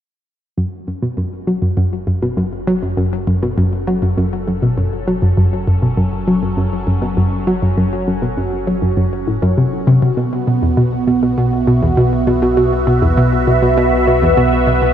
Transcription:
0.57 F#1 F#2 F#3
0.76 C#4
0.87 F#2
0.92 F#4
1.03 B2
1.17 F#2
1.47 F#3
1.62 F#2
1.77 F#2
2.07 F#2
2.22 B2
2.37 F#2
2.58 A4
2.67 F#3
2.82 F#2
2.97 F#2
3.27 F#2
3.43 B2
3.58 F#2
3.87 F#3
4.02 F#2
4.17 F#2
4.48 F#2
4.62 B2
4.78 F#2
5.07 F#3
5.22 F#2
5.37 F#2
5.67 F#2
5.82 B2
5.97 F#2
6.27 F#3
6.43 F#2
6.57 F#2
6.87 F#2
7.02 B2
7.17 F#2
7.47 F#3
7.62 F#2
7.77 F#2
8.07 F#2
8.22 B2
8.37 F#2
8.67 F#3
8.82 F#2
8.97 F#2
9.28 A2
9.42 F#2
9.57 C3
9.87 C3
10.02 C3
10.17 B1 B2 B3
10.47 B2
10.62 E2
10.77 B2
11.07 B2
11.23 B2 B4
11.38 B2
11.46 E5
11.67 B2
11.82 E2
11.97 B2
12.27 B2
12.42 B2
12.57 B2
12.87 B2
13.02 E2
13.17 B2
13.47 B2
13.62 B2
13.77 B2
14.07 B2
14.22 E2
14.37 B2
14.67 B2
14.82 B2

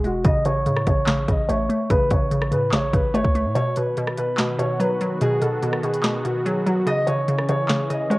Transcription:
Already playing: E1 B2
0.04 G#3 F#4, closed hi-hat
0.24 A1 C#3 D#5, kick, closed hi-hat
0.45 C#3 C#5, closed hi-hat
0.66 A2 C#3, closed hi-hat
0.76 cross-stick
0.86 A1 C#3 C#5, kick, closed hi-hat
1.07 C#3, snare, clap, closed hi-hat
1.28 A1 C#3 D#5, kick, closed hi-hat
1.48 A1 A3 C#5, closed hi-hat
1.69 A3, closed hi-hat
1.90 A1 C#3 B4, kick, closed hi-hat
2.11 A1 C#3 C#5, kick, closed hi-hat
2.31 C#3, closed hi-hat
2.42 cross-stick
2.52 A2 C#3 B4, closed hi-hat
2.72 A1 C#3 C#5, snare, clap, closed hi-hat
2.93 A1 C#3 B4, kick, closed hi-hat
3.14 G#1 A3 C#5, closed hi-hat
3.25 C#2, kick
3.35 A3, closed hi-hat
3.45 A2
3.55 B2 D#3 B3 F#4 C#5, closed hi-hat
3.76 B2 B4, closed hi-hat
3.97 B2, closed hi-hat
4.07 cross-stick
4.17 B2 B4, closed hi-hat
4.38 B2, snare, clap, closed hi-hat
4.59 B2 C#5, closed hi-hat
4.80 F#3 B4, closed hi-hat
5.01 F#3, closed hi-hat
5.21 B2 G#4, closed hi-hat
5.42 B2 A4, closed hi-hat
5.62 B2, closed hi-hat
5.73 cross-stick
5.83 B2 G#4, closed hi-hat
5.94 closed hi-hat
6.03 B2, snare, clap, closed hi-hat
6.24 B2 F#4, closed hi-hat
6.45 F#3 G#4, closed hi-hat
6.66 F#3 F#4, closed hi-hat
6.86 C#3 E3 C#4 G#4 D#5, closed hi-hat
7.07 C#3 C#5, closed hi-hat
7.28 C#3, closed hi-hat
7.38 cross-stick
7.49 C#3 C#5, closed hi-hat
7.69 C#3, snare, clap, closed hi-hat
7.90 C#3 D#5, closed hi-hat
8.10 G#3 C#5, closed hi-hat

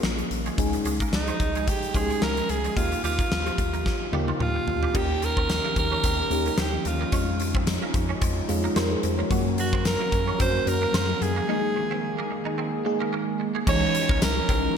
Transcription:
Already playing: A#3 C#4 F4 G#4 A#4
0.03 A#1 A#3, snare
0.18 muted clean electric guitar stroke, closed hi-hat
0.31 A#1, closed hi-hat
0.46 G#3, closed hi-hat
0.58 C#2 G#3 C#4 D#4 G#4, kick, closed hi-hat
0.73 muted clean electric guitar stroke, closed hi-hat
0.85 C#2 G#3, closed hi-hat
1.00 A#3, kick, closed hi-hat
1.12 C#2 D#4, snare
1.27 C4, closed hi-hat
1.40 C#2, muted clean electric guitar stroke, kick, closed hi-hat
1.55 G#3, closed hi-hat
1.67 G4, muted clean electric guitar stroke, kick, closed hi-hat
1.82 closed hi-hat
1.94 C#2 F3 G#3 C#4 D#4 G4 G#4, kick, closed hi-hat
2.02 G#4
2.10 G#3, closed hi-hat
2.22 C#2 A#3 A#4, snare
2.37 muted clean electric guitar stroke, closed hi-hat
2.49 C#2 G#4, closed hi-hat
2.64 G#3, closed hi-hat
2.76 D#2 A#3 D#4 F4 G4, kick, closed hi-hat
2.92 muted clean electric guitar stroke, closed hi-hat
3.04 D#2 G3 F4, closed hi-hat
3.19 A#3, kick, closed hi-hat
3.31 D#2, snare
3.46 C4, closed hi-hat
3.58 D#2, muted clean electric guitar stroke, kick, closed hi-hat
3.74 A#3, closed hi-hat
3.86 muted clean electric guitar stroke, kick, snare
4.12 D#2 G3 A#3 D#4 F4 G4, high tom
4.28 F3, high tom
4.40 D#2 F3 F4, mid tom
4.55 muted clean electric guitar stroke
4.67 D#2, floor tom
4.83 G3, floor tom
4.94 D#2 D#3 A#3 C#4 D#4 G4, kick, crash
5.22 A#4, muted clean electric guitar stroke, closed hi-hat
5.37 C4, kick
5.49 snare, closed hi-hat
5.64 A#3
5.76 D#2 A#4, muted clean electric guitar stroke, kick, closed hi-hat
5.92 C#4
6.04 D#2 C4, kick, closed hi-hat
6.30 D#2 A#3 C#4 D#4 G4, muted clean electric guitar stroke, closed hi-hat
6.46 A#3, closed hi-hat
6.58 D#2 C4 G4, snare, closed hi-hat
6.85 D#2 F4, muted clean electric guitar stroke, closed hi-hat
7.01 A#3
7.12 F2 F3 G#3 C#4 D#4 F4, kick, closed hi-hat
7.40 muted clean electric guitar stroke, closed hi-hat
7.55 C4, kick
7.67 snare, closed hi-hat
7.82 A#3
7.94 F2, muted clean electric guitar stroke, kick, closed hi-hat
8.09 C#4
8.22 F2 C4, kick, closed hi-hat
8.48 F2 G#3 C#4 D#4 F4, muted clean electric guitar stroke, closed hi-hat
8.64 A#3
8.76 F2 C4 G4 A#4, snare, closed hi-hat
8.91 G#4 C5
9.03 F2, muted clean electric guitar stroke, closed hi-hat
9.18 A#3 A#4 C#5
9.30 F#2 F#3 A#3 C#4 F#4 A#4, kick, closed hi-hat
9.58 F#4, muted clean electric guitar stroke, closed hi-hat
9.73 C4, kick
9.85 A#4, snare, closed hi-hat
10.00 A#3
10.12 F#2, muted clean electric guitar stroke, kick, closed hi-hat
10.28 C#4
10.40 F#2 C4 C5, kick, closed hi-hat
10.67 F#2 F#3 A#3 C#4 F#4 A#4, muted clean electric guitar stroke, closed hi-hat
10.82 A#3
10.94 F#2 C4, snare, closed hi-hat
11.21 F#2 G#4, muted clean electric guitar stroke, closed hi-hat
11.36 A#3
11.48 D#3 G#3 A#3 D#4 G#4
11.76 muted clean electric guitar stroke
11.91 C4
12.19 A#3
12.31 muted clean electric guitar stroke
12.45 D#4
12.58 C4
12.85 G#3 A#3 D#4 G#4, muted clean electric guitar stroke
13.01 A#3
13.13 A#3
13.40 muted clean electric guitar stroke
13.55 G#3
13.67 C#2 E3 G#3 C#4 D#4 C#5, kick, crash
13.95 muted clean electric guitar stroke, closed hi-hat
14.09 C#2 A#3, kick
14.22 C#2 A#4, snare, closed hi-hat, tambourine
14.49 C2 C4, kick, closed hi-hat

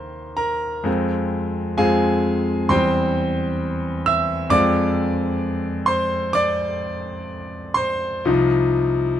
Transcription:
Already playing: D#2 A#3 D#4 G4 A#4 C5 A#5 C6
0.37 A#4 A#5
0.84 F2 G#3 C4 F4
1.77 F2 G#3 C4 F4 G#4 F5 G#5
2.69 E2 G3 C4 G4 C5 G5 C6
4.06 E5 E6
4.50 F2 G#3 C4 F4 D5 D6
5.86 C5 C6
6.33 D5 D6
7.74 C5 C6
8.25 C2 F3 D#4 F4

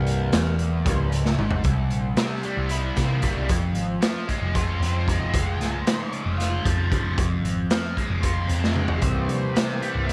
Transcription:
Already playing: C1 C2 E3 G3 A#3 A#4
0.07 closed hi-hat
0.32 E1 E2, snare, closed hi-hat
0.59 closed hi-hat
0.85 C#1 C#2 E3 G3 A#3, kick, closed hi-hat
1.12 closed hi-hat
1.25 snare
1.38 G#1 G#2, mid tom
1.51 floor tom
1.64 C2, kick, closed hi-hat
1.91 A#1, closed hi-hat
2.17 C3, snare, closed hi-hat
2.43 G3, closed hi-hat
2.57 C2
2.69 E4, closed hi-hat
2.96 C3 A#3, kick, snare, closed hi-hat
3.22 G1 G3, kick, closed hi-hat
3.36 C2
3.49 F1 F2, kick, closed hi-hat
3.75 G#1, closed hi-hat
4.02 F3, snare, closed hi-hat
4.28 G#3, kick, closed hi-hat
4.41 F1
4.55 F4, kick, closed hi-hat
4.80 F2 C4, closed hi-hat
5.08 G#3, kick, closed hi-hat
5.20 F1
5.33 F1 C#2, kick, closed hi-hat
5.59 C1, snare, closed hi-hat
5.87 G#2, snare, closed hi-hat
6.13 C#3, closed hi-hat
6.25 F1
6.38 F4, snare, closed hi-hat
6.64 F2 F3, kick, closed hi-hat
6.91 G#1 C#3, kick, closed hi-hat
7.04 F1
7.17 F1 F2, kick, closed hi-hat
7.44 G#1, closed hi-hat
7.70 F3, snare, closed hi-hat
7.97 G#3, kick, closed hi-hat
8.10 F1
8.22 F4, kick, closed hi-hat
8.48 F2 C4, closed hi-hat
8.64 snare
8.76 G#3, mid tom
8.88 F1, floor tom
9.02 C1 C2 E3 A#3 C4 G4 C5, kick, closed hi-hat
9.28 A#1, closed hi-hat
9.55 C3, snare, closed hi-hat
9.81 G3, closed hi-hat
9.95 C1
10.07 E4, closed hi-hat

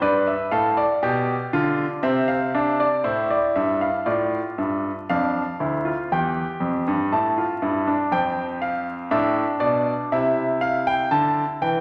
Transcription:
0.01 G2 B4 D5
0.27 E5
0.51 A2 A4 F5
0.77 D5
1.03 B2 G4
1.53 D3 F4
2.03 C3 C4 E5
2.28 F5
2.55 D4 E5
2.80 D5
3.04 A2 E4 C5
3.31 D5
3.56 G2 E5
3.81 F5
4.06 A2 F4 D5
4.58 G2 E5
5.10 F2 D4 F5
5.60 D2 E4
5.85 F4
6.12 E2 G4 G5
6.60 F2
6.88 G2
7.12 A2 E4 A5
7.38 F4
7.62 G2 E4
7.87 D4
8.12 F2 C4 G5
8.62 F5
9.11 A2 D4 E5
9.60 B2 D5
10.12 C3 E4 E5
10.61 F5
10.87 G5
11.11 D3 A5
11.61 E3 G5

